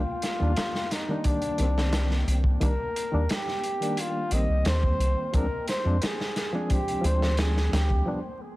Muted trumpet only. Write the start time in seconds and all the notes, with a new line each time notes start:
Already playing: F4
0.92 D#4
1.26 D4
2.64 A#4
3.32 G4
4.00 F4
4.33 D#5
4.68 C5
5.35 A#4
5.69 C5
6.04 G#4
6.72 G4
7.06 C5
7.39 G#4
7.74 G4